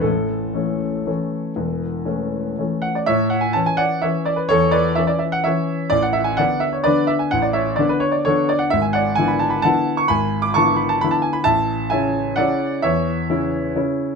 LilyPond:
<<
  \new Staff \with { instrumentName = "Grand piano" } { \time 3/4 \key a \major \tempo 4 = 129 a'2.~ | a'2~ a'8 fis''16 d''16 | <cis'' e''>8 fis''16 gis''16 a''16 gis''16 <d'' fis''>8 <cis'' e''>8 d''16 b'16 | <a' cis''>8 <b' d''>8 e''16 d''16 e''16 fis''16 <cis'' e''>4 |
d''16 fis''16 e''16 gis''16 <d'' fis''>8 e''16 cis''16 <b' d''>8 e''16 gis''16 | fis''16 d''16 <cis'' e''>8 d''16 b'16 cis''16 d''16 <a' cis''>8 d''16 fis''16 | e''16 gis''16 <d'' fis''>8 gis''16 b''16 a''16 b''16 <fis'' a''>8. cis'''16 | <gis'' b''>8. d'''16 <a'' cis'''>8 b''16 a''16 b''16 a''16 gis''16 b''16 |
<e'' a''>4 <e'' gis''>4 <d'' fis''>4 | <cis'' e''>4. r4. | }
  \new Staff \with { instrumentName = "Grand piano" } { \time 3/4 \key a \major <a,, a,>4 <e a cis'>4 <e a cis'>4 | <e,, e,>4 <e a cis'>4 <e a cis'>4 | a,4 <e cis'>4 <e cis'>4 | e,4 <e cis'>4 <e cis'>4 |
a,,4 <d b d'>4 <d b d'>4 | a,,4 <d b d'>4 <d b d'>4 | gis,,4 <d b e'>4 <d b e'>4 | gis,,4 <d b e'>4 <d b e'>4 |
a,,4 <cis cis' e'>4 <cis cis' e'>4 | e,4 <cis cis' e'>4 <cis cis' e'>4 | }
>>